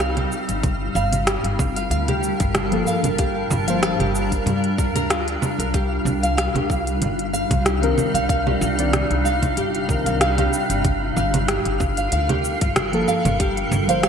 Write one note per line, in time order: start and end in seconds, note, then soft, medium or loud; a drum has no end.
0.00 0.25 C2 loud
0.00 0.60 C3 medium
0.00 10.81 G3 medium
0.00 0.61 C4 medium
0.00 0.60 D#4 medium
0.00 14.09 F4 medium
0.00 0.16 F5 medium
0.00 14.09 F5 medium
0.00 cross-stick loud
0.00 closed hi-hat medium
0.00 cabasa soft
0.17 0.64 G4 medium
0.17 closed hi-hat soft
0.17 low conga medium
0.32 cabasa medium
0.49 0.89 G1 medium
0.49 closed hi-hat soft
0.49 cabasa soft
0.63 14.09 D4 medium
0.63 5.70 A#4 medium
0.63 5.70 A5 medium
0.63 kick loud
0.63 closed hi-hat medium
0.63 low conga medium
0.63 cabasa soft
0.95 1.37 G1 loud
0.95 1.26 F5 medium
0.95 cabasa medium
1.13 closed hi-hat soft
1.13 low conga medium
1.13 cabasa soft
1.27 1.75 G4 medium
1.27 cross-stick loud
1.27 closed hi-hat medium
1.27 cabasa soft
1.44 1.84 G1 medium
1.44 closed hi-hat soft
1.59 kick loud
1.59 low conga medium
1.59 cabasa medium
1.76 1.90 F5 medium
1.76 closed hi-hat soft
1.76 cabasa soft
1.90 2.32 D2 medium
1.90 2.07 F5 medium
1.90 closed hi-hat medium
1.90 cabasa soft
2.08 2.71 G4 medium
2.08 closed hi-hat soft
2.08 low conga medium
2.23 cabasa medium
2.40 2.80 G1 loud
2.40 kick loud
2.40 closed hi-hat soft
2.40 cabasa soft
2.55 cross-stick loud
2.55 closed hi-hat medium
2.55 low conga medium
2.55 cabasa soft
2.71 3.00 F3 medium
2.71 3.00 A#3 medium
2.71 3.01 A4 loud
2.71 closed hi-hat soft
2.87 3.17 F5 medium
2.87 cabasa medium
3.03 3.44 G1 medium
3.03 closed hi-hat soft
3.03 low conga medium
3.03 cabasa soft
3.18 3.66 G4 medium
3.18 kick loud
3.18 closed hi-hat medium
3.18 cabasa soft
3.50 3.92 G1 loud
3.50 low conga medium
3.50 cabasa medium
3.67 3.96 F3 medium
3.67 3.96 A#3 medium
3.67 3.97 C5 loud
3.67 3.81 F5 medium
3.67 closed hi-hat soft
3.67 cabasa soft
3.83 3.99 F5 medium
3.83 cross-stick loud
3.83 closed hi-hat medium
3.83 cabasa soft
4.00 4.40 G1 medium
4.00 4.62 G4 medium
4.00 closed hi-hat soft
4.00 low conga medium
4.15 cabasa medium
4.32 kick medium
4.32 closed hi-hat soft
4.32 cabasa soft
4.46 4.95 G2 loud
4.46 closed hi-hat soft
4.46 low conga medium
4.46 cabasa soft
4.64 closed hi-hat soft
4.78 4.94 A#4 medium
4.78 kick loud
4.78 cabasa medium
4.95 5.35 D2 medium
4.95 5.09 A#4 loud
4.95 closed hi-hat soft
4.95 low conga medium
4.95 cabasa soft
5.10 5.26 F4 medium
5.10 cross-stick loud
5.10 closed hi-hat medium
5.10 cabasa soft
5.28 closed hi-hat soft
5.42 low conga medium
5.42 cabasa medium
5.59 5.99 C2 medium
5.59 5.73 A#4 medium
5.59 closed hi-hat soft
5.59 cabasa soft
5.74 10.81 C3 medium
5.74 10.81 D#4 medium
5.74 6.21 G4 medium
5.74 kick loud
5.74 closed hi-hat soft
5.74 cabasa soft
6.05 6.47 C2 loud
6.05 low conga medium
6.05 cabasa medium
6.23 6.36 F5 medium
6.23 closed hi-hat soft
6.23 cabasa soft
6.37 6.54 F5 medium
6.37 cross-stick loud
6.37 closed hi-hat medium
6.37 cabasa soft
6.55 6.95 C2 medium
6.55 7.17 G4 medium
6.55 closed hi-hat soft
6.55 low conga medium
6.70 kick loud
6.70 cabasa medium
6.87 closed hi-hat soft
6.87 cabasa soft
7.02 7.43 G1 medium
7.02 closed hi-hat medium
7.02 low conga medium
7.02 cabasa soft
7.19 closed hi-hat soft
7.33 7.64 F5 medium
7.33 cabasa medium
7.51 7.91 C2 loud
7.51 kick loud
7.51 closed hi-hat soft
7.51 low conga medium
7.51 cabasa soft
7.65 8.13 G4 medium
7.65 cross-stick medium
7.65 closed hi-hat medium
7.65 cabasa soft
7.82 8.10 D#3 loud
7.82 8.11 C4 medium
7.82 8.11 A#4 loud
7.82 closed hi-hat soft
7.98 low conga medium
7.98 cabasa medium
8.14 8.55 C2 medium
8.14 8.28 F5 medium
8.14 closed hi-hat soft
8.14 cabasa soft
8.29 8.46 F5 medium
8.29 kick loud
8.29 closed hi-hat medium
8.29 cabasa soft
8.46 9.09 G4 medium
8.46 low conga medium
8.61 9.03 C2 loud
8.61 cabasa medium
8.78 9.06 D#3 medium
8.78 9.07 C4 medium
8.78 9.07 D5 loud
8.78 closed hi-hat soft
8.78 cabasa soft
8.93 cross-stick loud
8.93 closed hi-hat medium
8.93 low conga medium
8.93 cabasa soft
9.11 9.51 C2 medium
9.11 closed hi-hat soft
9.25 9.55 F5 medium
9.25 cabasa medium
9.42 kick medium
9.42 closed hi-hat soft
9.42 low conga medium
9.42 cabasa soft
9.57 9.99 G1 medium
9.57 10.04 G4 medium
9.57 closed hi-hat medium
9.57 cabasa soft
9.75 closed hi-hat soft
9.88 10.17 D#3 medium
9.88 10.18 C4 medium
9.88 10.18 A#4 loud
9.88 kick loud
9.88 low conga medium
9.88 cabasa medium
10.06 10.46 C2 loud
10.06 10.19 F5 medium
10.06 closed hi-hat soft
10.06 cabasa soft
10.21 10.37 F5 medium
10.21 cross-stick loud
10.21 closed hi-hat medium
10.21 cabasa soft
10.38 10.85 G4 medium
10.38 closed hi-hat soft
10.38 low conga medium
10.53 cabasa medium
10.70 11.10 G1 medium
10.70 closed hi-hat soft
10.70 cabasa soft
10.84 14.09 G3 medium
10.84 14.09 A4 medium
10.84 14.09 A#4 medium
10.84 kick loud
10.84 closed hi-hat medium
10.84 low conga medium
10.84 cabasa soft
11.16 11.58 G1 loud
11.16 11.47 F5 medium
11.16 cabasa medium
11.34 closed hi-hat soft
11.34 low conga medium
11.34 cabasa soft
11.48 11.96 G4 medium
11.48 cross-stick loud
11.48 closed hi-hat medium
11.48 cabasa soft
11.65 12.06 G1 medium
11.65 closed hi-hat soft
11.80 kick loud
11.80 low conga medium
11.80 cabasa medium
11.97 12.11 F5 medium
11.97 closed hi-hat soft
11.97 cabasa soft
12.12 12.54 D2 medium
12.12 12.29 F5 medium
12.12 closed hi-hat medium
12.12 cabasa soft
12.29 12.92 G4 medium
12.29 closed hi-hat soft
12.29 low conga medium
12.45 cabasa medium
12.61 13.02 G1 loud
12.61 kick loud
12.61 closed hi-hat soft
12.61 cabasa soft
12.76 cross-stick loud
12.76 closed hi-hat medium
12.76 low conga medium
12.76 cabasa soft
12.92 13.21 F3 loud
12.92 13.21 A#3 medium
12.92 13.22 A4 loud
12.92 closed hi-hat soft
13.08 13.38 F5 medium
13.08 cabasa medium
13.25 13.65 G1 medium
13.25 closed hi-hat soft
13.25 low conga medium
13.25 cabasa soft
13.40 13.87 G4 medium
13.40 kick loud
13.40 closed hi-hat medium
13.40 cabasa soft
13.57 closed hi-hat soft
13.71 14.09 G1 loud
13.71 low conga medium
13.71 cabasa medium
13.88 14.09 F3 medium
13.88 14.09 A#3 medium
13.88 14.09 C5 loud
13.88 14.02 F5 medium
13.88 closed hi-hat soft
13.88 cabasa soft
14.03 14.09 F5 medium
14.03 cross-stick loud
14.03 closed hi-hat medium
14.03 cabasa soft